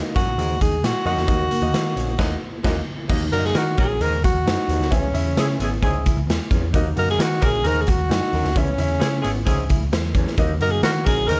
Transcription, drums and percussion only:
0.16 kick, closed hi-hat
0.39 closed hi-hat
0.61 kick, closed hi-hat
0.84 snare, closed hi-hat
1.06 open hi-hat
1.17 snare
1.28 kick, closed hi-hat
1.51 closed hi-hat
1.74 snare, closed hi-hat
1.97 closed hi-hat
2.19 kick, snare, crash
2.64 kick, snare, crash
3.09 kick, crash
3.33 closed hi-hat
3.45 snare
3.55 snare, closed hi-hat
3.77 kick, closed hi-hat
4.01 closed hi-hat
4.24 kick, closed hi-hat
4.47 snare, closed hi-hat
4.69 closed hi-hat
4.82 snare
4.92 kick, closed hi-hat
5.15 closed hi-hat
5.37 snare, closed hi-hat
5.60 closed hi-hat
5.83 kick, closed hi-hat
6.06 kick, closed hi-hat
6.30 snare, closed hi-hat
6.51 kick, closed hi-hat
6.74 kick, closed hi-hat
6.97 closed hi-hat
7.09 snare
7.20 snare, closed hi-hat
7.42 kick, closed hi-hat
7.64 closed hi-hat
7.87 kick, closed hi-hat
8.11 snare, closed hi-hat
8.32 open hi-hat
8.44 snare
8.56 kick, closed hi-hat
8.78 closed hi-hat
9.01 snare, closed hi-hat
9.24 closed hi-hat
9.47 kick, closed hi-hat
9.69 kick, closed hi-hat
9.93 snare, closed hi-hat
10.15 kick, closed hi-hat
10.27 snare
10.37 kick, closed hi-hat
10.61 closed hi-hat
10.83 snare, closed hi-hat
11.06 kick, closed hi-hat
11.29 closed hi-hat

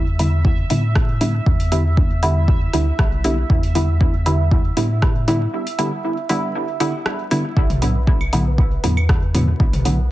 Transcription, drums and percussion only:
0.19 open hi-hat
0.45 kick
0.70 open hi-hat
0.96 kick, cross-stick
1.21 open hi-hat
1.46 kick
1.60 open hi-hat
1.72 open hi-hat
1.97 kick
2.23 open hi-hat
2.48 kick
2.74 open hi-hat
2.99 kick, cross-stick
3.24 open hi-hat
3.50 kick
3.63 open hi-hat
3.75 open hi-hat
4.01 kick
4.26 open hi-hat
4.51 kick
4.77 open hi-hat
5.02 kick, cross-stick
5.28 open hi-hat
5.67 open hi-hat
5.79 open hi-hat
6.29 open hi-hat
6.80 open hi-hat
7.06 cross-stick
7.31 open hi-hat
7.57 kick
7.70 open hi-hat, mid tom
7.82 open hi-hat
8.07 kick
8.21 claves
8.33 open hi-hat
8.58 kick
8.84 open hi-hat
8.97 claves
9.09 kick, cross-stick
9.34 open hi-hat, mid tom
9.60 kick
9.73 open hi-hat, mid tom
9.85 open hi-hat

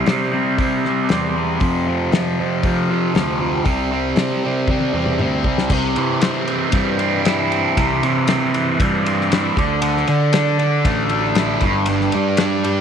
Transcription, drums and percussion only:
0.06 snare, open hi-hat
0.58 kick, open hi-hat
0.85 snare
1.09 snare, open hi-hat
1.60 kick, open hi-hat
2.12 snare, open hi-hat
2.64 kick, open hi-hat
3.15 snare, open hi-hat
3.65 kick, open hi-hat
4.16 snare, open hi-hat
4.67 kick, high tom
4.80 high tom
5.06 mid tom
5.19 mid tom
5.44 kick
5.58 snare
5.70 kick, crash
5.96 ride
6.21 snare, ride
6.48 ride
6.72 kick, ride
6.99 ride
7.25 snare, ride
7.52 ride
7.77 kick, ride
8.03 ride
8.28 snare, ride
8.54 ride
8.80 kick, ride
9.06 ride
9.21 snare
9.32 snare, ride
9.57 kick, ride
9.82 ride
9.97 snare
10.07 ride
10.33 snare, ride
10.59 ride
10.85 kick, ride
11.09 ride
11.35 snare, ride
11.61 kick, ride
11.86 ride
12.01 snare
12.12 ride
12.37 snare, ride
12.64 ride

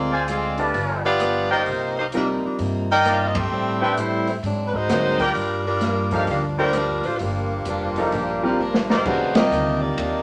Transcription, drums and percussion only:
0.28 closed hi-hat
0.58 open hi-hat
0.74 open hi-hat
1.20 cross-stick, closed hi-hat
1.66 open hi-hat
2.12 closed hi-hat
2.59 open hi-hat
3.05 cross-stick, closed hi-hat
3.35 kick, ride
3.97 closed hi-hat
4.27 open hi-hat
4.44 open hi-hat
4.74 kick
4.89 cross-stick, snare, closed hi-hat
5.19 kick, open hi-hat
5.35 open hi-hat
5.81 snare, closed hi-hat
6.11 kick, open hi-hat
6.27 open hi-hat
6.73 cross-stick, closed hi-hat
7.03 open hi-hat
7.19 open hi-hat
7.65 closed hi-hat
7.96 open hi-hat
8.12 open hi-hat
8.74 snare
8.90 snare
9.05 kick, crash
9.35 snare, ride
9.52 hi-hat pedal
9.98 ride

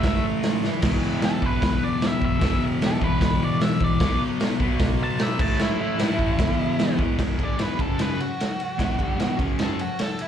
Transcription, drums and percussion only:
0.03 kick, snare, open hi-hat
0.43 snare, open hi-hat
0.64 snare
0.82 kick, snare, open hi-hat, crash
1.22 snare, open hi-hat
1.42 kick
1.62 kick, snare, open hi-hat
2.01 snare, open hi-hat
2.22 kick
2.41 kick, snare, open hi-hat
2.81 snare, open hi-hat
3.02 kick
3.21 kick, snare, open hi-hat
3.61 snare, open hi-hat
3.81 kick
4.00 kick, snare, open hi-hat
4.40 snare, open hi-hat
4.60 kick
4.79 kick, snare, open hi-hat
5.19 snare, open hi-hat
5.39 kick, crash
5.60 snare
5.99 snare, open hi-hat
6.19 kick
6.39 kick, snare, open hi-hat
6.79 snare, open hi-hat
6.99 kick
7.19 kick, snare, crash
7.39 kick, ride
7.59 snare, ride
7.79 kick, ride
7.99 snare, ride
8.20 ride
8.40 snare, ride
8.60 ride
8.79 kick, snare, ride
8.99 kick, ride
9.20 snare, ride
9.39 kick, ride
9.59 snare, ride
9.79 ride
9.99 snare, ride
10.19 ride

